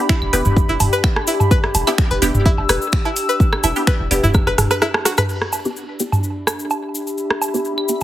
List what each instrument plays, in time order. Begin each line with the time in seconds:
Already playing: ambient pad D4 G4 E5 B5
0.09 synth pluck E4, finger snap, kick, cabasa
0.22 sub bass E1, claves
0.33 sub bass E1, synth stab B3 D4 E4 G4, synth pluck B4, open hi-hat, cabasa
0.45 sub bass E1, mid tom, cabasa
0.57 kick, cabasa
0.69 sub bass E1, synth pluck E4
0.80 sub bass E1, mid tom, open hi-hat, cabasa, low woodblock
0.93 synth pluck B4, cabasa
1.04 finger snap, kick, cabasa, claves
1.16 cross-stick, low woodblock
1.27 synth pluck E4, open hi-hat, cabasa
1.40 mid tom, cabasa, low woodblock
1.51 synth pluck B4, kick, cabasa
1.64 cross-stick
1.75 sub bass E1, open hi-hat, cabasa, low woodblock
1.87 synth stab B3 D4 E4 G4, synth pluck E4, open hi-hat, cabasa, claves
1.98 finger snap, kick, cabasa
2.11 sub bass E1, synth pluck B4, ambient pad E6
2.22 sub bass E1, synth stab B3 D4 E4 G4, open hi-hat, cabasa
2.34 sub bass E1, mid tom, cabasa
2.46 synth pluck E4, kick, cabasa
2.58 sub bass E1, low woodblock
2.69 sub bass E1, synth pluck B4, cross-stick, open hi-hat, cabasa, claves
2.82 cabasa
2.92 finger snap, kick, cabasa
3.05 synth pluck E4, low woodblock
3.16 open hi-hat, cabasa
3.29 synth pluck B4, cabasa
3.40 kick, cabasa
3.53 cross-stick, claves
3.64 sub bass E1, synth pluck E4, open hi-hat, cabasa, low woodblock
3.76 synth stab B3 D4 E4 G4, open hi-hat, cabasa
3.87 synth pluck B4, finger snap, kick, cabasa
4.00 sub bass E1
4.11 sub bass E1, synth stab B3 D4 E4 G4, open hi-hat, cabasa
4.23 sub bass E1, synth pluck E4, mid tom, cabasa
4.34 kick, cross-stick, cabasa, claves
4.47 sub bass E1, synth pluck B4, cross-stick
4.58 sub bass E1, cross-stick, mid tom, open hi-hat, cabasa, low woodblock
4.71 synth pluck B4, cross-stick, cabasa
4.82 synth pluck E4, cross-stick, cabasa
4.94 cross-stick, low woodblock
5.05 synth pluck F#4, cross-stick, open hi-hat, cabasa
5.17 synth pluck B4, cross-stick, mid tom, cabasa, claves, low woodblock
5.29 ambient pad D4, crash, cabasa
5.42 cross-stick
5.53 ambient pad G4, cabasa, low woodblock
5.65 synth stab B3 D4 E4 G4, ambient pad E5, cabasa
5.73 ambient pad B5, cabasa
6.00 synth stab B3 D4 E4 G4, cabasa
6.12 mid tom, cabasa, low woodblock
6.23 cabasa
6.47 cross-stick, cabasa, claves, low woodblock
6.59 cabasa
6.70 cabasa, low woodblock
6.95 cabasa
7.07 cabasa
7.18 cabasa
7.30 cross-stick
7.42 cabasa, low woodblock
7.54 synth stab B3 D4 E4 G4, cabasa
7.65 cabasa
7.78 claves
7.88 synth stab B3 D4 E4 G4, cabasa